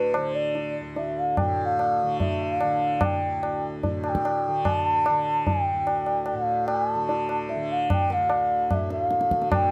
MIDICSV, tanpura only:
0, 0, Header, 1, 2, 480
1, 0, Start_track
1, 0, Tempo, 407056
1, 1625, Time_signature, 4, 2, 24, 8
1, 11454, End_track
2, 0, Start_track
2, 0, Title_t, "Tanpura"
2, 0, Program_c, 0, 104
2, 0, Note_on_c, 0, 38, 52
2, 0, Note_on_c, 0, 45, 49
2, 0, Note_on_c, 0, 50, 53
2, 197, Note_off_c, 0, 50, 0
2, 197, Note_on_c, 0, 50, 53
2, 948, Note_off_c, 0, 38, 0
2, 953, Note_on_c, 0, 38, 52
2, 1662, Note_off_c, 0, 45, 0
2, 1667, Note_on_c, 0, 45, 57
2, 2393, Note_off_c, 0, 50, 0
2, 2393, Note_on_c, 0, 50, 55
2, 3114, Note_off_c, 0, 50, 0
2, 3114, Note_on_c, 0, 50, 50
2, 3834, Note_off_c, 0, 38, 0
2, 3839, Note_on_c, 0, 38, 49
2, 4554, Note_off_c, 0, 45, 0
2, 4559, Note_on_c, 0, 45, 52
2, 5280, Note_off_c, 0, 50, 0
2, 5280, Note_on_c, 0, 50, 52
2, 6016, Note_off_c, 0, 50, 0
2, 6016, Note_on_c, 0, 50, 53
2, 6750, Note_off_c, 0, 38, 0
2, 6754, Note_on_c, 0, 38, 50
2, 7461, Note_off_c, 0, 45, 0
2, 7466, Note_on_c, 0, 45, 55
2, 8198, Note_off_c, 0, 50, 0
2, 8198, Note_on_c, 0, 50, 53
2, 8911, Note_off_c, 0, 50, 0
2, 8911, Note_on_c, 0, 50, 52
2, 9627, Note_off_c, 0, 38, 0
2, 9632, Note_on_c, 0, 38, 53
2, 10336, Note_off_c, 0, 45, 0
2, 10341, Note_on_c, 0, 45, 45
2, 11044, Note_off_c, 0, 50, 0
2, 11044, Note_on_c, 0, 50, 47
2, 11194, Note_off_c, 0, 45, 0
2, 11194, Note_on_c, 0, 45, 54
2, 11454, Note_off_c, 0, 38, 0
2, 11454, Note_off_c, 0, 45, 0
2, 11454, Note_off_c, 0, 50, 0
2, 11454, End_track
0, 0, End_of_file